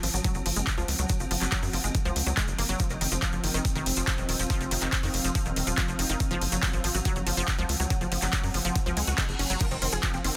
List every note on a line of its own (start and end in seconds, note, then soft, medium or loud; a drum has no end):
0.00 0.10 G#1 loud
0.00 9.59 F3 medium
0.00 0.12 F3 medium
0.00 9.59 C4 medium
0.00 2.80 F#5 loud
0.00 open hi-hat loud
0.14 0.20 G#1 medium
0.14 0.17 F#3 medium
0.14 closed hi-hat medium
0.14 shaker medium
0.24 0.33 F#3 loud
0.24 kick loud
0.24 closed hi-hat medium
0.24 shaker medium
0.34 0.42 F#1 medium
0.34 0.44 F#3 medium
0.34 closed hi-hat soft
0.34 shaker soft
0.46 0.52 F#1 loud
0.46 0.55 F3 medium
0.46 open hi-hat loud
0.56 0.63 F#1 loud
0.56 0.60 G#3 medium
0.56 closed hi-hat medium
0.56 shaker medium
0.67 kick loud
0.67 clap loud
0.67 closed hi-hat medium
0.67 shaker medium
0.78 0.84 C#2 medium
0.78 0.81 F3 loud
0.78 closed hi-hat soft
0.78 shaker soft
0.88 0.95 C#2 loud
0.88 open hi-hat loud
0.98 1.05 C#2 medium
0.98 1.05 F#3 medium
0.98 closed hi-hat medium
0.98 shaker medium
1.09 1.15 F#3 medium
1.09 kick loud
1.09 closed hi-hat medium
1.09 shaker medium
1.20 1.27 F#1 medium
1.20 1.24 F3 medium
1.20 closed hi-hat soft
1.20 shaker soft
1.31 1.37 F#1 loud
1.31 1.40 F3 medium
1.31 open hi-hat loud
1.41 1.48 F#1 medium
1.41 1.45 F#3 medium
1.41 clap soft
1.41 closed hi-hat soft
1.41 shaker medium
1.52 1.61 F#3 loud
1.52 kick loud
1.52 clap loud
1.52 closed hi-hat medium
1.52 shaker medium
1.63 1.69 F#2 medium
1.63 1.72 F#3 medium
1.63 open hi-hat medium
1.63 shaker soft
1.73 1.80 F#1 loud
1.73 1.82 F3 medium
1.73 open hi-hat loud
1.84 1.91 F#1 medium
1.84 1.88 G#3 medium
1.84 closed hi-hat medium
1.84 shaker medium
1.95 kick loud
1.95 closed hi-hat medium
1.95 shaker medium
2.05 2.12 C#2 medium
2.05 2.09 F3 loud
2.05 closed hi-hat soft
2.05 shaker soft
2.16 2.22 C#2 loud
2.16 open hi-hat loud
2.27 2.33 C#2 medium
2.27 2.30 F#3 medium
2.27 closed hi-hat medium
2.27 shaker medium
2.37 2.43 G#3 medium
2.37 kick loud
2.37 clap loud
2.37 closed hi-hat medium
2.37 shaker medium
2.48 2.54 F#1 medium
2.48 closed hi-hat soft
2.48 shaker soft
2.58 2.65 F#1 loud
2.58 2.62 A#3 medium
2.58 open hi-hat loud
2.69 2.76 F#1 medium
2.69 2.78 F#3 loud
2.69 closed hi-hat medium
2.69 shaker medium
2.79 2.86 F3 medium
2.79 6.20 C4 loud
2.79 kick loud
2.79 closed hi-hat medium
2.79 shaker medium
2.90 2.97 F1 medium
2.90 2.94 D#3 medium
2.90 6.20 F4 medium
2.90 closed hi-hat soft
2.90 shaker soft
3.01 3.08 F1 loud
3.01 3.10 D#3 medium
3.01 open hi-hat loud
3.11 3.18 F1 medium
3.11 3.15 F3 medium
3.11 closed hi-hat soft
3.11 shaker medium
3.22 3.31 F3 loud
3.22 6.20 F5 medium
3.22 kick loud
3.22 clap loud
3.22 closed hi-hat medium
3.22 shaker medium
3.32 3.40 F#1 medium
3.32 3.42 F3 medium
3.32 closed hi-hat soft
3.32 shaker soft
3.44 3.50 F#1 loud
3.44 3.52 D#3 medium
3.44 open hi-hat loud
3.54 3.61 F#1 loud
3.54 3.60 D#3 loud
3.54 closed hi-hat soft
3.54 shaker medium
3.65 kick loud
3.65 closed hi-hat medium
3.65 shaker medium
3.76 3.82 F1 medium
3.76 3.79 D#3 loud
3.76 closed hi-hat soft
3.76 shaker soft
3.86 3.93 F1 medium
3.86 open hi-hat loud
3.96 4.03 F1 loud
3.96 4.03 F3 medium
3.96 closed hi-hat medium
3.96 shaker medium
4.07 4.13 F3 medium
4.07 kick loud
4.07 clap loud
4.07 closed hi-hat medium
4.07 shaker medium
4.18 4.25 D#1 medium
4.18 4.22 D#3 medium
4.18 closed hi-hat soft
4.18 shaker soft
4.29 4.35 D#1 loud
4.29 4.38 D#3 medium
4.29 open hi-hat loud
4.39 4.46 D#1 medium
4.39 4.43 F3 medium
4.39 closed hi-hat medium
4.39 shaker medium
4.50 4.59 F3 loud
4.50 kick loud
4.50 closed hi-hat medium
4.50 shaker medium
4.61 4.67 F1 medium
4.61 4.69 F3 medium
4.61 closed hi-hat soft
4.61 shaker soft
4.71 4.78 F1 loud
4.71 4.80 D#3 medium
4.71 open hi-hat loud
4.81 4.88 F1 medium
4.81 4.88 D#3 loud
4.81 clap soft
4.81 closed hi-hat soft
4.81 shaker medium
4.93 kick loud
4.93 clap loud
4.93 closed hi-hat medium
4.93 shaker medium
5.03 5.10 F2 medium
5.03 5.07 D#3 loud
5.03 open hi-hat medium
5.03 shaker soft
5.14 5.20 F1 loud
5.14 open hi-hat loud
5.24 5.31 F1 loud
5.24 5.30 F3 medium
5.24 closed hi-hat medium
5.24 shaker medium
5.35 5.41 F3 medium
5.35 kick loud
5.35 closed hi-hat medium
5.35 shaker medium
5.46 5.52 D#1 medium
5.46 5.49 D#3 medium
5.46 closed hi-hat soft
5.46 shaker soft
5.56 5.63 D#1 loud
5.56 5.65 D#3 medium
5.56 open hi-hat loud
5.67 5.74 D#1 medium
5.67 5.71 F3 medium
5.67 closed hi-hat medium
5.67 shaker medium
5.78 5.86 F3 loud
5.78 kick loud
5.78 clap loud
5.78 closed hi-hat medium
5.78 shaker medium
5.88 5.95 F1 medium
5.88 5.97 F3 medium
5.88 closed hi-hat soft
5.88 shaker soft
5.99 6.05 F1 loud
5.99 6.08 D#3 medium
5.99 open hi-hat loud
6.10 6.16 F1 medium
6.10 6.15 D#3 loud
6.10 closed hi-hat medium
6.10 shaker medium
6.20 kick loud
6.20 closed hi-hat medium
6.20 shaker medium
6.26 9.61 F#5 medium
6.31 6.37 F#1 medium
6.31 6.34 F3 loud
6.31 closed hi-hat soft
6.31 shaker soft
6.41 6.48 F#1 medium
6.41 open hi-hat loud
6.52 6.59 F#1 medium
6.52 6.58 F#3 medium
6.52 closed hi-hat medium
6.52 shaker medium
6.63 6.69 F#3 medium
6.63 kick loud
6.63 clap loud
6.63 closed hi-hat medium
6.63 shaker medium
6.73 6.80 G#1 medium
6.73 6.77 F3 medium
6.73 closed hi-hat soft
6.73 shaker soft
6.84 6.91 G#1 loud
6.84 6.93 F3 medium
6.84 open hi-hat loud
6.95 7.01 G#1 medium
6.95 6.98 F#3 medium
6.95 closed hi-hat medium
6.95 shaker medium
7.05 7.14 F#3 loud
7.05 kick loud
7.05 closed hi-hat medium
7.05 shaker medium
7.16 7.22 F#1 medium
7.16 7.25 F#3 medium
7.16 closed hi-hat soft
7.16 shaker soft
7.27 7.33 F#1 loud
7.27 7.35 F3 medium
7.27 open hi-hat loud
7.37 7.44 F#1 medium
7.37 7.43 F3 loud
7.37 closed hi-hat medium
7.37 shaker medium
7.48 kick loud
7.48 clap loud
7.48 closed hi-hat medium
7.48 shaker medium
7.58 7.65 C#2 medium
7.58 7.62 F3 loud
7.58 closed hi-hat soft
7.58 shaker soft
7.69 7.76 C#2 loud
7.69 open hi-hat loud
7.80 7.86 C#2 medium
7.80 7.86 F#3 medium
7.80 closed hi-hat medium
7.80 shaker medium
7.90 7.96 F#3 medium
7.90 kick loud
7.90 closed hi-hat medium
7.90 shaker medium
8.01 8.08 F#1 medium
8.01 8.05 F3 medium
8.01 closed hi-hat soft
8.01 shaker soft
8.12 8.18 F#1 loud
8.12 8.21 F3 medium
8.12 open hi-hat loud
8.22 8.29 F#1 medium
8.22 8.26 F#3 medium
8.22 clap soft
8.22 closed hi-hat medium
8.22 shaker medium
8.33 8.42 F#3 loud
8.33 kick loud
8.33 clap loud
8.33 closed hi-hat medium
8.33 shaker medium
8.44 8.50 F#2 medium
8.44 8.52 F#3 medium
8.44 open hi-hat medium
8.44 shaker soft
8.54 8.61 F#1 loud
8.54 8.63 F3 medium
8.54 open hi-hat loud
8.65 8.71 F#1 medium
8.65 8.71 F3 loud
8.65 closed hi-hat medium
8.65 shaker medium
8.76 kick loud
8.76 closed hi-hat medium
8.76 reverse cymbal medium
8.76 shaker medium
8.86 8.93 C#2 medium
8.86 8.90 F3 loud
8.86 closed hi-hat soft
8.86 shaker soft
8.97 9.03 C#2 loud
8.97 9.06 G#3 medium
8.97 open hi-hat loud
9.07 9.14 C#2 loud
9.07 9.16 F#4 medium
9.07 closed hi-hat medium
9.07 shaker medium
9.18 9.24 G#3 medium
9.18 kick loud
9.18 clap loud
9.18 closed hi-hat medium
9.18 shaker medium
9.29 9.35 F#1 medium
9.29 closed hi-hat soft
9.29 shaker soft
9.39 9.46 F#1 loud
9.39 9.45 C#4 medium
9.39 open hi-hat loud
9.50 9.57 F#1 medium
9.50 9.56 F#3 loud
9.50 closed hi-hat medium
9.50 shaker medium
9.60 9.67 F3 medium
9.60 10.36 F3 medium
9.60 10.36 C4 medium
9.60 9.66 A#4 loud
9.60 kick loud
9.60 closed hi-hat medium
9.60 crash medium
9.60 shaker medium
9.68 9.78 F1 medium
9.68 9.75 D#3 medium
9.68 9.76 C4 medium
9.68 10.36 F5 medium
9.68 closed hi-hat soft
9.68 shaker soft
9.82 9.88 F1 medium
9.82 9.91 D#3 medium
9.82 9.87 C4 medium
9.82 10.36 F4 medium
9.82 open hi-hat loud
9.92 9.99 F1 medium
9.92 9.96 F3 medium
9.92 9.97 G#4 loud
9.92 closed hi-hat medium
9.92 shaker medium
10.03 10.12 F3 loud
10.03 10.08 C4 medium
10.03 kick loud
10.03 clap loud
10.03 closed hi-hat medium
10.03 shaker medium
10.14 10.20 F#1 medium
10.14 10.23 F3 medium
10.14 10.19 C4 medium
10.14 closed hi-hat soft
10.14 shaker soft
10.24 10.31 F#1 loud
10.24 10.33 D#3 medium
10.24 10.29 C4 medium
10.24 open hi-hat loud